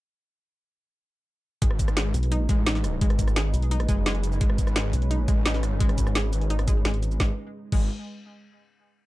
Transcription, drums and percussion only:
1.62 kick loud
1.62 closed hi-hat loud
1.71 cross-stick soft
1.79 kick medium
1.79 closed hi-hat medium
1.79 shaker medium
1.88 cross-stick medium
1.88 shaker soft
1.97 snare loud
1.97 closed hi-hat loud
2.14 closed hi-hat medium
2.14 shaker medium
2.23 closed hi-hat soft
2.32 closed hi-hat medium
2.49 kick loud
2.49 closed hi-hat medium
2.49 shaker medium
2.67 snare loud
2.67 closed hi-hat loud
2.75 snare soft
2.75 closed hi-hat soft
2.84 cross-stick soft
2.84 closed hi-hat medium
2.84 shaker medium
3.01 kick loud
3.01 closed hi-hat loud
3.10 cross-stick soft
3.10 closed hi-hat soft
3.19 kick medium
3.19 closed hi-hat medium
3.19 shaker medium
3.28 cross-stick soft
3.28 shaker soft
3.36 snare loud
3.36 closed hi-hat loud
3.54 closed hi-hat medium
3.54 shaker medium
3.62 closed hi-hat soft
3.71 closed hi-hat medium
3.80 cross-stick medium
3.80 closed hi-hat soft
3.89 kick loud
3.89 closed hi-hat medium
3.89 shaker medium
4.06 snare loud
4.06 closed hi-hat medium
4.15 closed hi-hat soft
4.23 closed hi-hat medium
4.23 shaker medium
4.32 shaker soft
4.41 kick loud
4.41 closed hi-hat medium
4.50 cross-stick medium
4.58 kick medium
4.58 closed hi-hat medium
4.58 shaker medium
4.67 cross-stick soft
4.67 shaker soft
4.76 snare loud
4.76 closed hi-hat medium
4.93 closed hi-hat medium
4.93 shaker medium
5.02 closed hi-hat soft
5.11 closed hi-hat medium
5.28 kick loud
5.28 closed hi-hat medium
5.28 shaker medium
5.46 snare loud
5.46 closed hi-hat medium
5.54 snare soft
5.54 closed hi-hat soft
5.63 cross-stick soft
5.63 closed hi-hat medium
5.63 shaker medium
5.80 kick loud
5.80 closed hi-hat loud
5.89 cross-stick soft
5.89 closed hi-hat soft
5.98 kick medium
5.98 closed hi-hat medium
5.98 shaker medium
6.07 cross-stick soft
6.07 shaker soft
6.15 snare loud
6.15 closed hi-hat medium
6.33 closed hi-hat medium
6.33 shaker medium
6.41 closed hi-hat soft
6.50 closed hi-hat medium
6.59 cross-stick medium
6.59 closed hi-hat soft
6.68 kick loud
6.68 closed hi-hat medium
6.68 shaker medium
6.85 snare loud
6.85 closed hi-hat medium
6.94 closed hi-hat soft
7.03 closed hi-hat medium
7.03 shaker medium
7.11 shaker soft
7.20 kick loud
7.20 snare loud
7.72 kick loud
7.72 crash medium

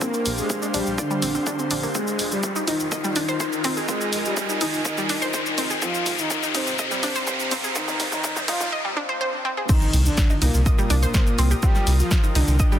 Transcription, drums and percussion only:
0.01 kick loud
0.01 shaker medium
0.14 shaker soft
0.26 open hi-hat loud
0.26 shaker medium
0.38 shaker soft
0.50 kick loud
0.50 shaker medium
0.62 shaker soft
0.74 open hi-hat loud
0.74 shaker medium
0.86 shaker soft
0.98 kick loud
0.98 shaker medium
1.11 shaker soft
1.22 open hi-hat loud
1.22 shaker medium
1.35 shaker soft
1.46 kick loud
1.46 shaker medium
1.59 shaker soft
1.71 open hi-hat loud
1.71 shaker medium
1.83 shaker soft
1.95 kick loud
1.95 mid tom soft
1.95 shaker medium
2.07 shaker soft
2.19 open hi-hat loud
2.19 shaker medium
2.31 mid tom soft
2.31 shaker soft
2.43 kick loud
2.43 shaker medium
2.56 shaker soft
2.67 open hi-hat loud
2.67 mid tom medium
2.67 shaker medium
2.80 shaker soft
2.92 kick loud
2.92 mid tom medium
2.92 shaker medium
3.04 shaker soft
3.16 open hi-hat loud
3.16 shaker medium
3.28 shaker soft
3.40 kick loud
3.40 shaker medium
3.52 shaker soft
3.64 open hi-hat loud
3.64 mid tom medium
3.64 shaker soft
3.77 shaker soft
3.88 kick loud
3.88 mid tom medium
3.88 shaker medium
4.01 shaker soft
4.13 open hi-hat loud
4.13 shaker medium
4.25 shaker soft
4.37 kick loud
4.37 shaker medium
4.49 shaker soft
4.61 open hi-hat loud
4.61 mid tom medium
4.61 shaker medium
4.73 shaker soft
4.85 kick loud
4.85 mid tom medium
4.85 shaker medium
4.98 shaker soft
5.09 open hi-hat loud
5.09 shaker medium
5.22 mid tom medium
5.22 shaker soft
5.34 kick loud
5.34 shaker medium
5.46 shaker soft
5.58 open hi-hat loud
5.58 mid tom medium
5.58 shaker medium
5.70 shaker soft
5.82 kick loud
5.82 mid tom medium
5.82 shaker medium
5.94 shaker soft
6.06 open hi-hat loud
6.06 mid tom medium
6.06 shaker medium
6.19 shaker soft
6.30 kick loud
6.30 mid tom medium
6.30 shaker medium
6.43 shaker soft
6.55 open hi-hat loud
6.55 mid tom medium
6.55 shaker medium
6.67 shaker soft
6.79 kick loud
6.79 mid tom medium
6.79 shaker medium
6.91 shaker soft
7.03 open hi-hat loud
7.03 mid tom medium
7.03 shaker medium
7.15 shaker soft
7.27 kick loud
7.27 mid tom medium
7.27 shaker medium
7.40 shaker soft
7.51 open hi-hat medium
7.51 mid tom medium
7.51 shaker medium
7.64 shaker soft
7.76 kick loud
7.76 mid tom medium
7.76 shaker medium
7.88 mid tom medium
7.88 shaker soft
8.00 open hi-hat loud
8.00 mid tom medium
8.00 shaker medium
8.12 mid tom medium
8.12 shaker medium
8.24 kick loud
8.24 mid tom loud
8.24 shaker medium
8.36 mid tom medium
8.36 shaker soft
8.48 open hi-hat loud
8.48 mid tom loud
8.48 shaker medium
8.61 mid tom medium
8.61 shaker soft
9.69 kick loud
9.69 crash loud
9.69 shaker medium
9.82 shaker soft
9.93 open hi-hat loud
9.93 shaker medium
10.06 shaker soft
10.18 kick loud
10.18 snare loud
10.18 shaker medium
10.30 shaker soft
10.42 open hi-hat loud
10.42 shaker medium
10.54 shaker soft
10.66 kick loud
10.66 shaker medium
10.78 shaker soft
10.90 open hi-hat loud
10.90 shaker medium
11.03 shaker soft
11.14 kick loud
11.14 snare loud
11.14 shaker medium
11.27 shaker soft
11.39 open hi-hat loud
11.39 shaker medium
11.51 shaker soft
11.63 kick loud
11.63 shaker medium
11.75 snare soft
11.75 shaker soft
11.87 open hi-hat loud
11.87 shaker medium
11.99 shaker soft
12.11 kick loud
12.11 snare loud
12.11 shaker medium
12.23 shaker soft
12.35 open hi-hat loud
12.35 shaker medium
12.48 shaker soft
12.60 kick loud
12.60 shaker medium
12.72 shaker soft

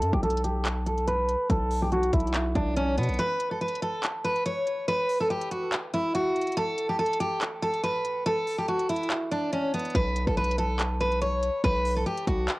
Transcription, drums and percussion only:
0.02 closed hi-hat medium
0.13 kick medium
0.23 closed hi-hat soft
0.30 closed hi-hat medium
0.37 closed hi-hat medium
0.44 closed hi-hat medium
0.65 clap loud
0.65 closed hi-hat medium
0.86 closed hi-hat medium
0.98 closed hi-hat soft
1.08 closed hi-hat medium
1.29 closed hi-hat medium
1.50 kick loud
1.50 closed hi-hat medium
1.71 open hi-hat medium
1.92 closed hi-hat soft
2.03 closed hi-hat medium
2.13 kick loud
2.13 closed hi-hat medium
2.20 closed hi-hat medium
2.27 closed hi-hat soft
2.34 clap loud
2.34 closed hi-hat medium
2.55 kick loud
2.55 closed hi-hat medium
2.77 closed hi-hat medium
2.98 closed hi-hat medium
3.03 closed hi-hat medium
3.09 closed hi-hat soft
3.14 closed hi-hat soft
3.19 closed hi-hat medium
3.40 closed hi-hat medium
3.61 closed hi-hat soft
3.68 closed hi-hat medium
3.75 closed hi-hat medium
3.82 closed hi-hat medium
4.03 clap loud
4.03 closed hi-hat medium
4.25 closed hi-hat medium
4.36 closed hi-hat soft
4.46 closed hi-hat medium
4.67 closed hi-hat medium
4.88 closed hi-hat medium
5.09 open hi-hat medium
5.30 closed hi-hat soft
5.41 closed hi-hat medium
5.51 closed hi-hat medium
5.72 clap loud
5.72 closed hi-hat medium
5.93 closed hi-hat medium
6.15 closed hi-hat medium
6.36 closed hi-hat medium
6.41 closed hi-hat medium
6.47 closed hi-hat medium
6.52 closed hi-hat medium
6.57 closed hi-hat medium
6.78 closed hi-hat medium
6.99 closed hi-hat soft
7.06 closed hi-hat medium
7.13 closed hi-hat medium
7.20 closed hi-hat medium
7.41 clap loud
7.41 closed hi-hat medium
7.63 closed hi-hat medium
7.74 closed hi-hat soft
7.84 closed hi-hat medium
8.05 closed hi-hat medium
8.26 closed hi-hat medium
8.47 open hi-hat medium
8.68 closed hi-hat soft
8.79 closed hi-hat medium
8.89 closed hi-hat medium
8.96 closed hi-hat medium
9.03 closed hi-hat soft
9.10 clap loud
9.10 closed hi-hat medium
9.32 closed hi-hat medium
9.53 closed hi-hat medium
9.74 closed hi-hat medium
9.79 closed hi-hat medium
9.85 closed hi-hat soft
9.90 closed hi-hat soft
9.95 kick loud
9.95 closed hi-hat medium
10.16 closed hi-hat medium
10.27 kick medium
10.37 closed hi-hat soft
10.44 closed hi-hat medium
10.51 closed hi-hat medium
10.58 closed hi-hat medium
10.79 clap loud
10.79 closed hi-hat medium
11.01 closed hi-hat medium
11.12 closed hi-hat soft
11.22 closed hi-hat medium
11.43 closed hi-hat medium
11.64 kick loud
11.64 closed hi-hat medium
11.85 open hi-hat medium
12.06 closed hi-hat soft
12.17 closed hi-hat medium
12.27 kick loud
12.27 closed hi-hat medium
12.48 clap loud
12.48 closed hi-hat medium

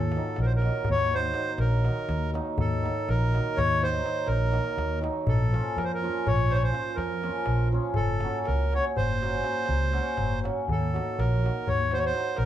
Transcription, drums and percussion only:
0.12 darbuka tek medium
0.24 darbuka tek soft
0.36 darbuka tek medium
0.62 darbuka tek medium
0.72 darbuka tek soft
0.84 darbuka dum medium
1.22 darbuka tek soft
1.34 darbuka tek medium
1.58 darbuka tek medium
1.72 darbuka tek soft
1.85 darbuka tek medium
1.96 darbuka tek soft
2.09 darbuka tek medium
2.23 darbuka tek soft
2.35 darbuka tek medium
2.47 darbuka tek soft
2.58 darbuka dum medium
2.72 darbuka tek soft
2.86 darbuka tek medium
2.98 darbuka tek soft
3.09 darbuka tek medium
3.35 darbuka tek medium
3.58 darbuka dum medium
3.84 darbuka tek medium
3.95 darbuka tek soft
4.06 darbuka tek medium
4.16 darbuka tek soft
4.27 darbuka tek medium
4.41 darbuka tek soft
4.54 darbuka tek medium
4.78 darbuka tek medium
4.91 darbuka tek soft
5.04 darbuka tek medium
5.16 darbuka tek soft
5.27 darbuka dum medium
5.54 darbuka tek medium
5.78 darbuka tek medium
6.04 darbuka tek soft
6.16 darbuka tek soft
6.27 darbuka dum medium
6.51 darbuka tek medium
6.63 darbuka tek soft
6.74 darbuka tek medium
6.86 darbuka tek soft
6.98 darbuka tek medium
7.10 darbuka tek soft
7.24 darbuka tek medium
7.35 darbuka tek soft
7.46 darbuka tek medium
7.84 darbuka tek soft
7.94 darbuka dum medium
8.21 darbuka tek medium
8.34 darbuka tek soft
8.46 darbuka tek medium
8.60 darbuka tek soft
8.72 darbuka tek soft
8.84 darbuka tek soft
8.97 darbuka dum medium
9.23 darbuka tek medium
9.32 darbuka tek soft
9.44 darbuka tek medium
9.55 darbuka tek soft
9.66 darbuka tek medium
9.79 darbuka tek soft
9.93 darbuka tek medium
10.06 darbuka tek soft
10.17 darbuka tek medium
10.17 darbuka dum medium
10.31 darbuka tek soft
10.45 darbuka tek medium
10.58 darbuka tek soft
10.69 darbuka dum medium
10.82 darbuka tek soft
10.96 darbuka tek medium
11.10 darbuka tek soft
11.20 darbuka tek medium
11.46 darbuka tek medium
11.56 darbuka tek soft
11.67 darbuka dum medium
11.91 darbuka tek medium
12.04 darbuka tek soft
12.13 darbuka tek soft
12.25 darbuka tek soft
12.37 darbuka tek medium

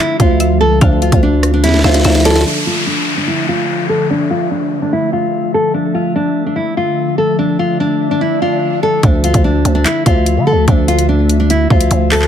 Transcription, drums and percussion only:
0.20 kick loud
0.20 closed hi-hat medium
0.40 closed hi-hat medium
0.81 kick loud
0.81 closed hi-hat medium
1.02 closed hi-hat soft
1.12 kick loud
1.12 closed hi-hat medium
1.43 cross-stick loud
1.43 closed hi-hat medium
1.64 snare medium
1.64 closed hi-hat medium
1.69 snare medium
1.74 snare medium
1.79 snare medium
1.84 snare medium
1.89 snare medium
1.94 snare medium
1.94 closed hi-hat medium
2.00 snare medium
2.04 snare medium
2.04 closed hi-hat medium
2.10 snare medium
2.15 snare loud
2.20 snare medium
2.25 snare loud
2.25 closed hi-hat medium
2.30 snare medium
2.36 snare loud
2.41 snare loud
9.03 kick loud
9.03 closed hi-hat medium
9.24 closed hi-hat medium
9.34 kick loud
9.34 closed hi-hat medium
9.65 closed hi-hat medium
9.86 clap loud
9.86 closed hi-hat medium
10.06 kick loud
10.06 closed hi-hat medium
10.26 closed hi-hat medium
10.68 kick loud
10.68 closed hi-hat medium
10.88 closed hi-hat medium
10.99 closed hi-hat medium
11.30 closed hi-hat medium
11.50 closed hi-hat medium
11.70 kick loud
11.81 closed hi-hat medium
11.91 closed hi-hat medium
12.11 clap loud
12.11 open hi-hat medium
12.22 clap medium

